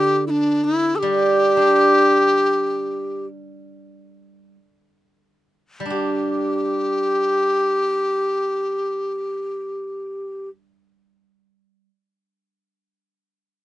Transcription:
Already playing: D3 G4
0.27 D4 E4
0.64 E4
0.96 G4 A4
1.02 G3
1.57 D4
5.80 G3
5.86 D4
5.90 G4

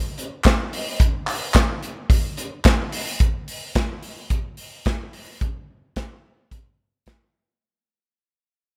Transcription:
0.18 hi-hat pedal, open hi-hat
0.44 kick, snare, clap, hi-hat pedal, open hi-hat
0.73 hi-hat pedal, open hi-hat
1.00 kick, hi-hat pedal, open hi-hat
1.27 clap, hi-hat pedal, open hi-hat
1.54 kick, snare, clap, hi-hat pedal, open hi-hat
1.83 hi-hat pedal, open hi-hat
2.10 kick, hi-hat pedal, open hi-hat
2.37 hi-hat pedal, open hi-hat
2.64 kick, snare, clap, hi-hat pedal, open hi-hat
2.92 hi-hat pedal, open hi-hat
3.20 kick, closed hi-hat
3.48 open hi-hat
3.75 kick, snare, closed hi-hat
4.03 open hi-hat
4.30 kick, closed hi-hat
4.57 open hi-hat
4.85 kick, snare, closed hi-hat
5.13 open hi-hat
5.41 kick, closed hi-hat
5.96 kick, snare, closed hi-hat
6.51 kick, closed hi-hat
7.06 kick, snare, closed hi-hat

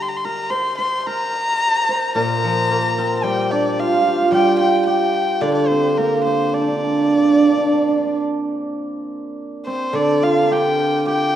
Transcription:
Already playing: G3
0.02 C6
0.09 A#5
0.17 C6
0.25 A#4 A#5
0.50 C5 C6
0.78 C5 C6
1.01 C6
1.07 A#4 A#5
1.89 C5
2.15 A#2 A#4 A#5
2.44 F3
2.71 A#3
2.98 C4 A#4
3.23 G3 G4 G5
3.51 D4 D5
3.79 F4 F5
3.86 F4
3.94 F4
4.01 F4
4.08 F4
4.16 F4
4.22 F4
4.32 G3 G4 G5
4.59 G4 G5
4.86 G4 G5
5.41 D3 D4 D5
5.55 D5
5.68 C4 C5
5.97 A#3 A#4
6.25 C4 C5
6.53 D4 D5
6.61 D4
6.68 D4
6.75 D4
6.84 D4
6.91 D4
6.99 D4
7.07 D4
7.14 D4
7.22 D4
7.29 D4
7.36 D4
7.42 D4
7.50 D4
7.57 D4
7.65 D4
7.73 D4
7.81 D4
7.89 D4
7.97 D4
8.05 D4
9.66 C4 C5
9.93 D3 D4 D5
10.22 F4 F5
10.43 A#4
10.51 G4 G5
11.06 G4 G5

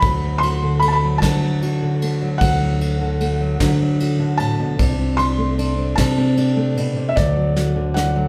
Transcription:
0.00 D2 F#3 B5, kick, ride
0.04 A3 F#4
0.24 F#3
0.38 C6
0.43 F#4, ride
0.63 D3
0.80 A3 B5, ride
0.88 A5
0.93 B5
1.04 F#3
1.18 D3 A5, kick
1.22 D2 F#3 A3 F#4, snare, ride
1.43 F#3
1.62 F#4, ride
1.82 D3
2.02 A3, ride
2.22 F#3
2.38 D2 F#3 F#5, kick, ride
2.42 A3 F#4
2.61 F#3
2.81 F#4, ride
3.01 D3
3.21 A3, ride
3.41 F#3
3.59 D2 D3 F#3 A3 F#4, kick, snare, ride
3.81 F#3
4.00 F#4, ride
4.19 D3
4.37 A2 A5, ride
4.59 B2
4.79 C2 C3 C4 D4, kick, ride
4.99 C4
5.17 D4 C6, ride
5.38 A3
5.59 D4, ride
5.78 C4
5.95 C3 C4 D4 A5, kick, snare, ride
6.18 C4
6.37 D4, ride
6.56 A3
6.77 B2, ride
6.96 C3
7.09 E5
7.16 D2 F#3 A3 F#4 D5, kick, snare
7.36 F#3
7.56 F#4, snare
7.76 D3
7.94 A3 F#5, snare
8.16 F#3

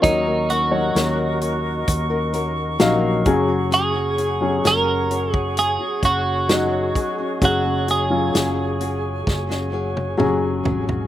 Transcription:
Already playing: C#6
0.02 D#2 D#3 F#3 A#3 C#4 D#4 F#4 A#4 C#5 D#5, kick, closed hi-hat
0.26 C#4 F#4 A#4
0.49 A#3 C#4 F#4 A#4, closed hi-hat
0.71 F#3 D#4 C#5
0.95 D#2 D#3 A#3 C#4 F#4 A#4, snare, closed hi-hat
1.41 A#3 C#4 F#4 A#4, closed hi-hat
1.88 D#2, kick, closed hi-hat
2.10 C#4 F#4 A#4
2.33 A#3 C#4 F#4 A#4, closed hi-hat
2.79 A#1 D#3 F#3 A#3 C#4 D#4 F#4 A#4 F5, snare, closed hi-hat
3.25 F#1 F#3 C#4 F#4 G#4 C#5 F#5, kick, closed hi-hat
3.48 C#4 F#4 G#4
3.71 F#3 C#4 F#4 G#4, closed hi-hat
3.94 C#4 F#4 G#4
4.17 F#3 C#4 F#4 G#4, closed hi-hat
4.41 F#3 C#4 G#4
4.64 F#1 F#3 C#4 F#4 G#4 A#4, snare, closed hi-hat
5.10 F#3 C#4 F#4 G#4, closed hi-hat
5.34 G#4, kick
5.57 G#4, closed hi-hat
5.79 C#4 F#4 G#4
6.02 F#1 F#3 C#4 F#4 G#4, kick, closed hi-hat
6.49 F#3 C#4 D#4 F#4 G#4, snare, closed hi-hat
6.95 F#3 C#4 F#4 G#4 G#5, kick, closed hi-hat
7.18 C#4 F#4 G#4
7.41 F#1 F#3 C#4 F#4 G#4, kick, closed hi-hat
7.65 C#4 F#4 G#4
7.87 F#3 C#4 F#4 G#4, closed hi-hat
8.10 F#3 C#4 F4
8.33 F#1 F#3 C#4 F#4 G#4, snare, closed hi-hat
8.80 F#3 C#4 F#4 G#4, closed hi-hat
9.27 F#1, kick, snare
9.49 C#4 F#4 G#4, snare
9.72 F#3 C#4 F#4 G#4
9.97 high tom
10.17 F#1 F#3 C#4 F#4 G#4, mid tom
10.64 G#1 F#3 C#4 F#4 G#4, floor tom
10.88 C#4 F#4 G#4, floor tom

